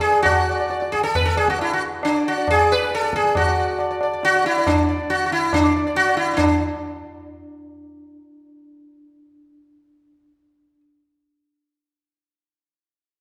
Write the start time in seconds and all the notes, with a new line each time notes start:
Already playing: D5
0.01 G#4, tabla te
0.23 F#4, tabla na, tabla ge
0.37 D5
0.49 D5
0.60 D5
0.70 D5, tabla te
0.80 D5, tabla te
0.92 G#4, tabla ke
1.03 A4, tabla te
1.15 B4, tabla tin, tabla ge
1.26 A4
1.37 G#4, tabla na
1.48 F#4, tabla ke
1.59 E4, tabla na
1.73 F#4
2.03 D4, tabla na
2.16 D5
2.28 F#4
2.37 D5
2.48 G#4, tabla na, tabla ge
2.60 D5
2.69 B4, tabla te
2.82 D5
2.91 A4, tabla te
3.02 D5, tabla te
3.13 G#4, tabla ke
3.25 tabla te
3.35 F#4, tabla na, tabla ge
3.48 D5
3.60 D5
3.79 D5, tabla na
3.91 D5
4.01 D5, tabla na
4.13 D5
4.23 F#4, tabla te
4.36 D5
4.45 E4, tabla te
4.58 D5
4.67 D4, tabla na, tabla ge
4.89 D5
5.10 F#4, tabla te
5.26 F#4
5.31 E4, tabla te
5.53 D4, tabla na, tabla ge
5.65 D5
5.76 D5
5.87 D5
5.95 F#4, tabla te
6.08 D5
6.17 E4, tabla te
6.34 D4 E4
6.38 tabla na, tabla ge